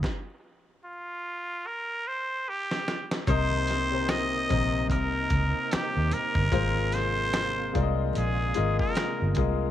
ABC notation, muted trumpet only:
X:1
M:4/4
L:1/16
Q:"Swing 16ths" 1/4=74
K:Cphr
V:1 name="Muted trumpet"
z4 F4 B2 c2 G3 z | c4 e4 B4 G2 B2- | B2 c4- c z A3 B3 z2 |]